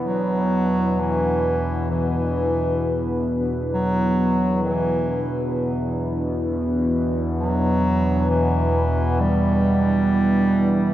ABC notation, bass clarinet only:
X:1
M:4/4
L:1/8
Q:1/4=66
K:Em
V:1 name="Bass clarinet" clef=bass
F,2 E,2 E,3 z | F,2 E,2 z4 | F,2 E,2 G,4 |]